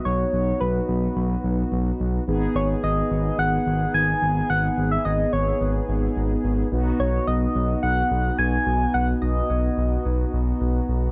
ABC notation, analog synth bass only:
X:1
M:4/4
L:1/8
Q:1/4=108
K:G#phr
V:1 name="Analog synth bass" clef=bass
B,,, B,,, B,,, B,,, B,,, B,,, B,,, B,,, | G,,, G,,, G,,, G,,, G,,, G,,, G,,, G,,, | G,,, G,,, G,,, G,,, G,,, G,,, G,,, G,,, | B,,, B,,, B,,, B,,, B,,, B,,, B,,, B,,, |
B,,, B,,, B,,, B,,, B,,, B,,, B,,, B,,, |]